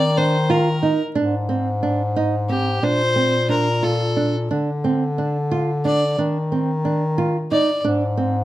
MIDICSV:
0, 0, Header, 1, 4, 480
1, 0, Start_track
1, 0, Tempo, 665927
1, 840, Time_signature, 5, 3, 24, 8
1, 6084, End_track
2, 0, Start_track
2, 0, Title_t, "Violin"
2, 0, Program_c, 0, 40
2, 0, Note_on_c, 0, 74, 91
2, 123, Note_on_c, 0, 72, 74
2, 134, Note_off_c, 0, 74, 0
2, 364, Note_on_c, 0, 70, 63
2, 375, Note_off_c, 0, 72, 0
2, 721, Note_off_c, 0, 70, 0
2, 1798, Note_on_c, 0, 67, 71
2, 2041, Note_on_c, 0, 72, 88
2, 2052, Note_off_c, 0, 67, 0
2, 2522, Note_off_c, 0, 72, 0
2, 2525, Note_on_c, 0, 70, 71
2, 2766, Note_on_c, 0, 69, 67
2, 2777, Note_off_c, 0, 70, 0
2, 3131, Note_off_c, 0, 69, 0
2, 4219, Note_on_c, 0, 74, 77
2, 4442, Note_off_c, 0, 74, 0
2, 5415, Note_on_c, 0, 74, 82
2, 5635, Note_off_c, 0, 74, 0
2, 6084, End_track
3, 0, Start_track
3, 0, Title_t, "Nylon-string guitar"
3, 0, Program_c, 1, 24
3, 127, Note_on_c, 1, 62, 59
3, 258, Note_off_c, 1, 62, 0
3, 357, Note_on_c, 1, 65, 68
3, 490, Note_off_c, 1, 65, 0
3, 595, Note_on_c, 1, 63, 61
3, 728, Note_off_c, 1, 63, 0
3, 832, Note_on_c, 1, 62, 67
3, 965, Note_off_c, 1, 62, 0
3, 1073, Note_on_c, 1, 60, 59
3, 1206, Note_off_c, 1, 60, 0
3, 1317, Note_on_c, 1, 62, 62
3, 1449, Note_off_c, 1, 62, 0
3, 1559, Note_on_c, 1, 63, 70
3, 1691, Note_off_c, 1, 63, 0
3, 1797, Note_on_c, 1, 60, 59
3, 1930, Note_off_c, 1, 60, 0
3, 2038, Note_on_c, 1, 62, 67
3, 2170, Note_off_c, 1, 62, 0
3, 2276, Note_on_c, 1, 60, 57
3, 2410, Note_off_c, 1, 60, 0
3, 2516, Note_on_c, 1, 62, 58
3, 2650, Note_off_c, 1, 62, 0
3, 2758, Note_on_c, 1, 65, 63
3, 2893, Note_off_c, 1, 65, 0
3, 3002, Note_on_c, 1, 62, 58
3, 3137, Note_off_c, 1, 62, 0
3, 3248, Note_on_c, 1, 62, 70
3, 3382, Note_off_c, 1, 62, 0
3, 3491, Note_on_c, 1, 60, 60
3, 3625, Note_off_c, 1, 60, 0
3, 3735, Note_on_c, 1, 62, 63
3, 3868, Note_off_c, 1, 62, 0
3, 3975, Note_on_c, 1, 65, 70
3, 4108, Note_off_c, 1, 65, 0
3, 4216, Note_on_c, 1, 62, 56
3, 4348, Note_off_c, 1, 62, 0
3, 4458, Note_on_c, 1, 62, 68
3, 4590, Note_off_c, 1, 62, 0
3, 4699, Note_on_c, 1, 60, 58
3, 4830, Note_off_c, 1, 60, 0
3, 4936, Note_on_c, 1, 62, 63
3, 5068, Note_off_c, 1, 62, 0
3, 5175, Note_on_c, 1, 65, 72
3, 5306, Note_off_c, 1, 65, 0
3, 5417, Note_on_c, 1, 63, 62
3, 5546, Note_off_c, 1, 63, 0
3, 5654, Note_on_c, 1, 62, 77
3, 5784, Note_off_c, 1, 62, 0
3, 5892, Note_on_c, 1, 60, 62
3, 6022, Note_off_c, 1, 60, 0
3, 6084, End_track
4, 0, Start_track
4, 0, Title_t, "Bass clarinet"
4, 0, Program_c, 2, 71
4, 0, Note_on_c, 2, 51, 67
4, 716, Note_off_c, 2, 51, 0
4, 839, Note_on_c, 2, 44, 65
4, 2014, Note_off_c, 2, 44, 0
4, 2033, Note_on_c, 2, 46, 66
4, 3224, Note_off_c, 2, 46, 0
4, 3249, Note_on_c, 2, 50, 63
4, 4433, Note_off_c, 2, 50, 0
4, 4455, Note_on_c, 2, 51, 69
4, 5527, Note_off_c, 2, 51, 0
4, 5649, Note_on_c, 2, 44, 74
4, 6084, Note_off_c, 2, 44, 0
4, 6084, End_track
0, 0, End_of_file